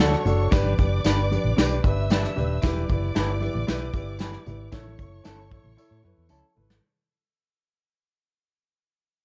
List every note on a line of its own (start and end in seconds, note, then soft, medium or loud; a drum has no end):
0.00 0.14 D2 medium
0.00 0.14 D4 medium
0.00 0.19 D4 medium
0.00 0.19 F#4 medium
0.00 0.14 F#4 medium
0.00 0.15 A4 medium
0.00 0.19 A4 medium
0.00 0.51 C#5 medium
0.00 0.51 C#6 medium
0.12 snare soft
0.25 0.46 F#1 loud
0.25 0.45 D4 medium
0.25 0.45 F#4 medium
0.25 0.46 A4 medium
0.25 closed hi-hat medium
0.25 low conga medium
0.51 0.73 G1 medium
0.51 0.71 D4 loud
0.51 0.72 G4 loud
0.51 0.72 B4 loud
0.51 1.81 D5 medium
0.51 1.81 D6 medium
0.51 kick loud
0.51 snare loud
0.51 closed hi-hat medium
0.51 tambourine medium
0.66 closed hi-hat soft
0.66 high conga medium
0.78 0.99 F#1 medium
0.78 0.98 D4 medium
0.78 0.98 G4 medium
0.78 0.99 B4 medium
0.78 kick medium
0.78 closed hi-hat medium
0.78 high conga medium
1.04 1.36 G1 medium
1.04 1.24 D4 medium
1.04 1.19 D4 medium
1.04 1.24 G4 medium
1.04 1.20 G4 medium
1.04 1.20 B4 medium
1.04 1.25 B4 loud
1.04 snare loud
1.04 closed hi-hat medium
1.04 tambourine loud
1.04 muted conga soft
1.31 1.50 D4 medium
1.31 1.51 G4 medium
1.31 1.51 B4 medium
1.31 closed hi-hat medium
1.31 muted conga soft
1.31 high conga medium
1.44 1.55 A1 medium
1.44 low conga medium
1.56 1.78 B1 medium
1.56 1.76 D4 loud
1.56 1.77 G4 loud
1.56 1.77 B4 loud
1.56 snare loud
1.56 closed hi-hat medium
1.56 tambourine medium
1.71 closed hi-hat soft
1.83 2.26 G1 medium
1.83 2.03 D4 medium
1.83 2.03 G4 medium
1.83 2.04 B4 loud
1.83 2.61 E5 medium
1.83 2.61 E6 medium
1.83 kick medium
1.83 closed hi-hat medium
1.83 muted conga soft
2.10 2.29 D4 medium
2.10 2.25 D4 medium
2.10 2.30 G4 medium
2.10 2.25 G4 medium
2.10 2.25 B4 medium
2.10 2.30 B4 loud
2.10 snare loud
2.10 closed hi-hat medium
2.10 tambourine medium
2.10 muted conga soft
2.10 high conga medium
2.24 snare soft
2.35 2.58 D#1 medium
2.35 2.55 D4 medium
2.35 2.56 G4 medium
2.35 2.56 B4 loud
2.35 closed hi-hat medium
2.35 low conga medium
2.62 2.84 E1 loud
2.62 2.81 E4 loud
2.62 2.82 G4 loud
2.62 2.82 B4 loud
2.62 4.69 D5 medium
2.62 4.69 D6 medium
2.62 kick loud
2.62 snare loud
2.62 closed hi-hat medium
2.62 tambourine medium
2.76 high conga medium
2.88 3.10 F#1 medium
2.88 3.08 E4 medium
2.88 3.09 G4 medium
2.88 3.09 B4 medium
2.88 kick medium
2.88 closed hi-hat medium
2.88 muted conga soft
2.88 high conga medium
3.14 3.47 G1 medium
3.14 3.34 E4 medium
3.14 3.30 E4 medium
3.14 3.35 G4 medium
3.14 3.30 G4 medium
3.14 3.35 B4 loud
3.14 3.30 B4 medium
3.14 snare loud
3.14 closed hi-hat medium
3.14 tambourine loud
3.14 muted conga soft
3.40 3.60 E4 medium
3.40 3.61 G4 medium
3.40 3.61 B4 medium
3.40 closed hi-hat medium
3.40 high conga medium
3.54 3.65 A1 medium
3.54 low conga medium
3.67 3.89 B1 medium
3.67 3.87 E4 loud
3.67 3.87 G4 loud
3.67 3.88 B4 loud
3.67 snare loud
3.67 closed hi-hat loud
3.67 tambourine medium
3.81 closed hi-hat soft
3.94 4.36 G1 medium
3.94 4.13 E4 medium
3.94 4.13 G4 medium
3.94 4.14 B4 medium
3.94 kick medium
3.94 closed hi-hat medium
3.94 muted conga soft
4.19 4.39 E4 medium
4.19 4.34 E4 medium
4.19 4.35 G4 medium
4.19 4.40 G4 medium
4.19 4.35 B4 loud
4.19 4.40 B4 medium
4.19 snare loud
4.19 tambourine medium
4.19 muted conga soft
4.19 high conga medium
4.33 snare soft
4.46 4.67 G#1 medium
4.46 4.66 E4 medium
4.46 4.66 G4 medium
4.46 4.67 B4 medium
4.46 closed hi-hat medium
4.46 muted conga soft
4.46 low conga medium
4.72 4.94 A1 loud
4.72 4.92 E4 loud
4.72 4.92 A4 loud
4.72 6.79 C#5 medium
4.72 4.92 C#5 loud
4.72 6.78 C#6 medium
4.72 kick loud
4.72 snare loud
4.72 closed hi-hat medium
4.72 tambourine medium
4.72 muted conga soft
4.72 low conga medium
4.86 high conga medium
4.97 5.20 F#1 loud
4.97 5.18 E4 medium
4.97 5.18 A4 medium
4.97 5.19 C#5 medium
4.97 kick medium
4.97 closed hi-hat medium
4.97 high conga medium
5.24 5.57 G1 medium
5.24 5.39 C#4 medium
5.24 5.39 E4 medium
5.24 5.44 E4 medium
5.24 5.40 A4 medium
5.24 5.45 A4 medium
5.24 5.45 C#5 medium
5.24 snare medium
5.24 closed hi-hat medium
5.24 tambourine loud
5.51 5.71 E4 medium
5.51 5.71 A4 medium
5.51 5.71 C#5 medium
5.51 kick loud
5.51 closed hi-hat medium
5.51 high conga medium
5.63 5.75 A1 medium
5.63 low conga medium
5.77 5.97 E4 loud
5.77 5.97 A4 loud
5.77 5.98 C#5 loud
5.77 tambourine medium
5.77 muted conga soft
5.91 6.01 A2 medium
6.03 6.15 F#2 medium
6.03 6.23 E4 medium
6.03 6.23 A4 medium
6.03 6.24 B4 loud
6.03 muted conga soft
6.03 high conga soft
6.18 6.28 E2 medium
6.29 6.41 C#2 loud
6.29 6.45 C#4 medium
6.29 6.49 E4 medium
6.29 6.45 E4 medium
6.29 6.45 A4 medium
6.29 6.50 A4 medium
6.29 6.50 C#5 medium
6.29 tambourine medium
6.29 muted conga soft
6.29 high conga medium
6.55 6.78 G#1 medium
6.55 6.75 E4 medium
6.55 6.76 A4 medium
6.55 6.76 B4 medium
6.55 low conga medium
6.70 snare medium